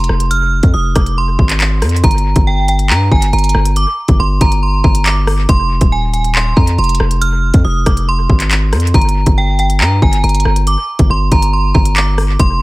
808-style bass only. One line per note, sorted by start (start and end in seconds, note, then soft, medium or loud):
0.09 0.61 F1 loud
0.63 0.74 F2 loud
0.74 0.95 F1 loud
0.96 1.37 F1 loud
1.39 1.84 G#1 loud
1.82 2.03 F2 loud
2.04 2.35 G1 loud
2.36 2.91 G1 loud
2.90 3.10 G2 loud
3.12 3.32 G1 loud
3.33 3.54 G1 loud
3.55 3.86 G1 loud
4.09 4.19 G1 loud
4.19 4.40 G1 loud
4.41 4.82 G1 loud
4.84 5.46 G1 loud
5.49 5.80 F1 loud
5.81 6.54 D#1 loud
6.57 6.78 F2 loud
6.78 6.99 F1 loud
7.00 7.52 F1 loud
7.54 7.64 F2 loud
7.65 7.85 F1 loud
7.86 8.28 F1 loud
8.30 8.74 G#1 loud
8.73 8.93 F2 loud
8.94 9.25 G1 loud
9.27 9.82 G1 loud
9.81 10.01 G2 loud
10.02 10.23 G1 loud
10.24 10.44 G1 loud
10.45 10.76 G1 loud
10.99 11.09 G1 loud
11.10 11.31 G1 loud
11.32 11.73 G1 loud
11.75 12.37 G1 loud
12.40 12.62 F1 loud